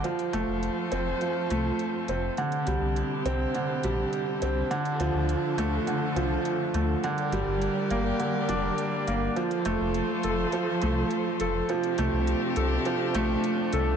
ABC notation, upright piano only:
X:1
M:4/4
L:1/8
Q:1/4=103
K:F
V:1 name="Upright piano"
F, A, z C F, A, z C | D, G, z C D, G, z C | D, F, z A, D, F, z A, | D, G, z B, D, D z B, |
F, A, z A F, A, z A | F, A, z A F, A, z A |]